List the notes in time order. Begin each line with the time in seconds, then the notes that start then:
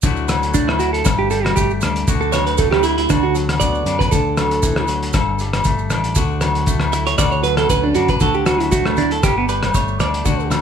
0.02 D2 D3 F#3 A3 E4 F#4, kick, closed hi-hat, maracas
0.16 maracas
0.28 F#3, cross-stick, closed hi-hat, low agogo, maracas
0.43 closed hi-hat, maracas
0.54 A3 D4, kick, closed hi-hat, maracas
0.68 E4, cross-stick, low agogo
0.79 E4 F#4, closed hi-hat, maracas
0.93 A4, closed hi-hat
1.05 G1 G2 A4, muted clean electric guitar stroke, kick, cross-stick, closed hi-hat, low agogo, maracas
1.19 G4
1.30 G3 A4, closed hi-hat, maracas
1.44 F#4, cross-stick, closed hi-hat, low agogo
1.56 G1 A3 G4, kick, closed hi-hat, maracas
1.70 maracas
1.81 D2 D4, cross-stick, closed hi-hat, low agogo, maracas
1.96 closed hi-hat, maracas
2.08 D2 D3 F#4, kick, closed hi-hat, maracas
2.21 A4, maracas
2.32 F#3 C#5, cross-stick, closed hi-hat, low agogo, maracas
2.46 B4, closed hi-hat, maracas
2.58 A3 A4, kick, closed hi-hat, maracas
2.71 G4, cross-stick, low agogo
2.83 E4, closed hi-hat, maracas
2.98 E4, closed hi-hat
3.09 D2 D3 D4 F#4, kick, cross-stick, closed hi-hat, low agogo, maracas
3.23 F#4
3.35 F#3, closed hi-hat, maracas
3.49 cross-stick, closed hi-hat, low agogo
3.60 D2 B3 D5, kick, closed hi-hat, maracas
3.75 maracas
3.86 F#2 D4, closed hi-hat, low agogo, maracas
3.99 B4, kick, closed hi-hat, maracas
4.11 D2 D3 A4, muted clean electric guitar stroke, kick, closed hi-hat, maracas
4.37 F#3, cross-stick, closed hi-hat, low agogo, maracas
4.51 closed hi-hat, maracas
4.63 E3, kick, closed hi-hat, maracas
4.76 cross-stick, low agogo
4.87 F#3, closed hi-hat, maracas
5.03 closed hi-hat
5.13 G1 G2 A4, kick, cross-stick, closed hi-hat, low agogo, maracas
5.39 G3, closed hi-hat, maracas
5.53 cross-stick, closed hi-hat, low agogo
5.64 G1 A3, kick, closed hi-hat, maracas
5.78 maracas
5.90 A1 D4, cross-stick, closed hi-hat, low agogo, maracas
6.04 closed hi-hat, maracas
6.15 D2 D3 F#4, kick, closed hi-hat, maracas
6.41 F#3, cross-stick, closed hi-hat, low agogo, maracas
6.55 closed hi-hat, maracas
6.66 A3, kick, closed hi-hat, maracas
6.80 cross-stick, low agogo, maracas
6.93 E4, muted clean electric guitar stroke, closed hi-hat, maracas
7.06 C#5, closed hi-hat, maracas
7.18 D2 D3 F#4 D5, kick, cross-stick, closed hi-hat, low agogo, maracas
7.32 C#5, maracas
7.43 F#3 B4, closed hi-hat, maracas
7.57 A4, cross-stick, closed hi-hat, low agogo, maracas
7.69 D2 C#4 B4, kick, closed hi-hat, maracas
7.84 D4
7.94 F#2 D4 F#4, closed hi-hat, low agogo, maracas
8.08 B4, kick, closed hi-hat
8.20 D2 D3 F#4 A4, kick, closed hi-hat, low conga, maracas
8.34 G4, maracas
8.46 F#3 F#4, cross-stick, closed hi-hat, high conga, low agogo, maracas
8.60 E4, closed hi-hat, maracas
8.72 A3 F#4, kick, closed hi-hat, high conga, maracas
8.86 A3, cross-stick, low agogo
8.97 D4 E4, closed hi-hat, low conga, maracas
9.11 A4, closed hi-hat
9.23 G1 D4 G4, muted clean electric guitar stroke, kick, cross-stick, closed hi-hat, low agogo, maracas
9.38 B3
9.49 G3 B4, closed hi-hat, maracas
9.62 cross-stick, closed hi-hat, high conga, low agogo
9.74 G1 A3 C#5, kick, closed hi-hat, maracas
9.88 maracas
10.00 D2 D4 D5, cross-stick, closed hi-hat, low conga, low agogo, maracas
10.14 closed hi-hat, maracas
10.25 D2 D3 F#4, kick, closed hi-hat, low conga, maracas
10.40 maracas
10.50 F#3, cross-stick, closed hi-hat, high conga, low agogo, maracas